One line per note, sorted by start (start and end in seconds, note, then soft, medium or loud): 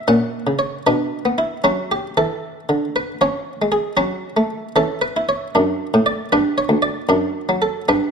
0.08 0.39 A#2 medium
0.08 0.82 C#4 soft
0.08 0.60 F#5 loud
0.47 0.78 C#3 medium
0.59 0.85 C#5 medium
0.87 1.18 B2 medium
0.87 1.61 D4 soft
0.87 1.39 B4 medium
1.25 1.57 B3 medium
1.38 1.64 E4 medium
1.64 2.07 F#3 medium
1.64 3.18 C#4 medium
1.64 1.91 F#4 medium
1.91 2.14 G4 medium
2.17 2.60 E3 medium
2.17 2.84 A4 loud
2.69 3.11 D3 medium
2.96 3.22 B4 loud
3.21 3.52 F3 medium
3.21 3.95 C#4 soft
3.21 3.73 C#5 loud
3.62 3.92 G#3 medium
3.72 3.94 G#4 loud
3.97 4.29 F#3 medium
3.97 4.72 C#4 medium
3.97 4.50 F#4 loud
4.37 4.68 A3 medium
4.76 5.07 E3 medium
4.76 5.50 C#4 medium
4.76 4.98 A4 loud
5.01 5.28 B4 loud
5.16 5.47 E4 medium
5.29 6.06 C#5 loud
5.55 5.86 F#2 medium
5.55 6.29 D4 medium
5.94 6.25 A2 medium
6.06 6.28 D5 loud
6.32 6.64 G2 medium
6.32 7.06 D4 medium
6.32 6.58 B4 loud
6.58 6.84 C#5 loud
6.69 7.01 D2 medium
6.82 7.62 D5 loud
7.09 7.41 F#2 medium
7.09 7.85 D4 medium
7.49 7.81 F#3 medium
7.62 7.85 A4 medium
7.88 8.11 G2 medium
7.88 8.11 D4 medium
7.88 8.11 B4 loud